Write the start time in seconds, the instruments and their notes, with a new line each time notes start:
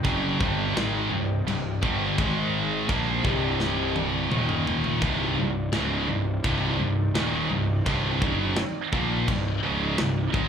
Already playing: analog synth pad C4 D5 D#5 G5
0.04 picked electric bass F#1, distorted electric guitar F#2 C#3 F#3, kick, china
0.40 picked electric bass G1, distorted electric guitar G2 D3 G3, kick
0.74 picked electric bass G#1, distorted electric guitar G#2 D#3 G#3, snare, china
1.10 picked electric bass C1, distorted electric guitar C2 G2
1.46 picked electric bass C1, distorted electric guitar C2 G2, china
1.82 picked electric bass G1, distorted electric guitar G2 D3 G3, kick
2.18 picked electric bass G#1, distorted electric guitar G#2 D#3 G#3, analog synth pad G#3 D#4 A#4 G#5, kick, china
2.89 picked electric bass A#1, distorted electric guitar A#2 F3 A#3, analog synth pad C4 G4 D5 D#5, kick, china
3.23 picked electric bass C1, distorted electric guitar C2 G2 C3, kick
3.60 snare
3.96 high tom
4.29 picked electric bass D#1, distorted electric guitar D#2 A#2 D#3, analog synth pad A#3 F4, mid tom
4.34 analog synth pad D#3 D#5
4.49 mid tom
4.67 floor tom
4.84 floor tom
5.00 picked electric bass C1, distorted electric guitar C2 G2 C3, analog synth pad D#3 C4 D#4 D5, kick, china
5.37 picked electric bass C1, distorted electric guitar C2 G2
5.72 picked electric bass C#1, distorted electric guitar C#2 G#2 C#3, snare, china
6.08 picked electric bass C1, distorted electric guitar C2 G2
6.44 picked electric bass C1, distorted electric guitar C2 G2 C3, kick, china
6.79 picked electric bass C1, distorted electric guitar C2 G2
7.15 picked electric bass D#1, distorted electric guitar D#2 A#2 D#3, snare, china
7.50 picked electric bass C1, distorted electric guitar C2 G2
7.86 picked electric bass C1, distorted electric guitar C2 G2 C3, kick, china
8.22 picked electric bass F#1, distorted electric guitar F#2 C#3 F#3, kick
8.57 snare, china
8.93 picked electric bass A#1, distorted electric guitar A#2 F3 A#3, kick
9.28 picked electric bass C1, distorted electric guitar C2 G2, kick, china
9.63 picked electric bass C#1, distorted electric guitar C#2 G#2 C#3
9.98 picked electric bass C1, distorted electric guitar C2 G2, snare, china
10.32 picked electric bass G#1, distorted electric guitar G#2 D#3 G#3, kick